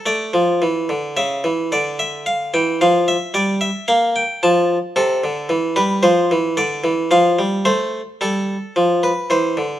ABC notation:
X:1
M:3/4
L:1/8
Q:1/4=111
K:Dm
V:1 name="Harpsichord"
d4 e2 | d e f g f e | d e f g a2 | A3 =B c2 |
d2 f2 c2 | A3 =B c2 |]
V:2 name="Harpsichord" clef=bass
A, F, E, D, ^C, E, | D,3 E, F,2 | G,2 B,2 F,2 | C, D, E, G, F, E, |
D, E, F, G, A,2 | G,2 F,2 E, D, |]